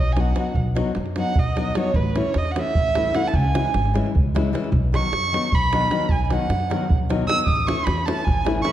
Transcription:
Already playing: B1 D#5
0.12 F#3 G#5
0.16 B3 D#4 F#4 F#5, davul high
0.35 F#3 B3 D#4 F#4, davul high
0.54 B1, davul low
0.75 F#3 B3 D#4 F#4, davul high
0.95 F#2, davul high
1.06 davul high
1.16 F#3 B3 D#4 F#4 F#5, davul high
1.36 B1 D#5, davul low
1.56 F#3 B3 D#4 F#4, davul high
1.75 F#3 B3 D#4 F#4 C#5, davul high
1.94 A1 B4, davul low
2.15 E3 A3 C#4 E4 C#5, davul high
2.34 E2 D#5, davul high
2.45 davul high
2.51 F#5
2.56 E3 A3 C#4 E4 E5, davul high
2.75 A1, davul low
2.95 E3 A3 C#4 E4, davul high
3.14 E3 A3 C#4 E4 F#5, davul high
3.27 A5
3.34 C#2 G#5, davul low
3.45 davul high
3.54 E3 G#3 C#4 E4, davul high
3.65 davul high
3.74 G#1, davul high
3.85 davul high
3.94 E3 G#3 C#4 E4, davul high
4.06 davul high
4.15 C#2, davul low
4.35 E3 G#3 C#4 E4, davul high
4.53 E3 G#3 C#4 E4, davul high
4.64 davul high
4.72 B1, davul low
4.92 D#3 F#3 B3 D#4 C#6, davul high
5.12 F#2, davul high
5.24 davul high
5.32 D#3 F#3 B3 D#4, davul high
5.52 B1 B5, davul low
5.73 D#3 F#3 B3 D#4, davul high
5.90 D#3 F#3 B3 D#4, davul high
6.09 B1 G#5, davul low
6.24 G#5
6.30 D#3 F#3 B3 D#4 F#5, davul high
6.49 F#2, davul high
6.60 davul high
6.70 D#3 F#3 B3 D#4, davul high
6.89 B1, davul low
7.09 D#3 F#3 B3 D#4, davul high
7.27 D#3 F#3 B3 D#4 E6, davul high
7.46 A1 D#6, davul low
7.67 E3 A3 C#4 E4 C#6, davul high
7.85 E2 B5, davul high
7.98 davul high
8.05 E3 A3 C#4 E4 A5, davul high
8.24 A1 G#5, davul low
8.44 E3 A3 C#4 E4, davul high
8.62 E3 A3 C#4 E4 C#6, davul high
8.66 B5 C#6

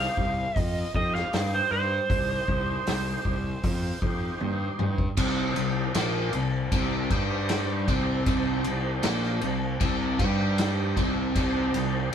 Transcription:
Already playing: D#4 G4 C5 F5
0.17 C2, kick
0.56 F2 D#5, kick, open hi-hat
0.95 F2 D#4 G4 C5 D#5, kick
1.15 F5, snare
1.33 G2, snare, open hi-hat
1.55 C5
1.71 G2 C5
2.09 C2 D#4 G4 C5, kick, open hi-hat
2.48 C2, kick
2.87 C2, snare, open hi-hat
3.25 C2, kick
3.64 F2, kick, open hi-hat
4.01 F2 D#4 G4 C5, kick
4.41 G2, high tom
4.79 G2, mid tom
4.98 kick
5.17 C2 C3 C4 D#4 G4 C5, kick, crash
5.56 C2 C3, crash
5.95 A#1 A#2 A#3, snare, crash
6.33 C2 C3, crash
6.72 C2 C3 C4, kick, crash
7.10 G2 G3 D#4 G4 C5, kick, crash
7.49 snare, crash
7.88 C2 C3 C4, kick, crash
8.26 C2 C3 C4 D#4 G4 C5, kick, crash
8.64 C2 C3, crash
9.03 A#1 A#2 A#3, snare, crash
9.23 snare
9.41 C2 C3, crash
9.80 C2 C3 C4, kick, crash
10.19 G2 G3 D#4 G4 C5, kick, crash
10.58 snare, crash
10.97 C2 C3 C4, kick, crash
11.33 C2 C3 C4 D#4 G4 C5, kick, crash
11.74 C2 C3, crash

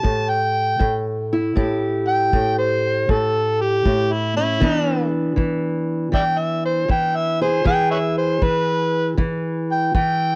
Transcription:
Already playing: G4 A5
0.03 A2, kick
0.29 G5
0.79 A2, kick
1.33 E4
1.56 A2 G4, kick
2.08 G5
2.33 A2, kick
2.58 C5
3.09 A2 A4, kick
3.61 G4
3.85 A2, kick
4.12 E4
4.36 C#4 E4
4.60 E3 B3 D4, kick
5.36 E3, kick
6.12 E3 D5 E5 G5, kick
6.38 E5
6.65 C5
6.88 E3 G5, kick
7.16 E5
7.41 G#4 C5
7.64 E3 G#4 G5, kick
7.91 B4 C#5 E5
8.17 C5
8.42 E3 B4, kick
9.18 E3, kick
9.71 G5
9.95 E3 G5, kick

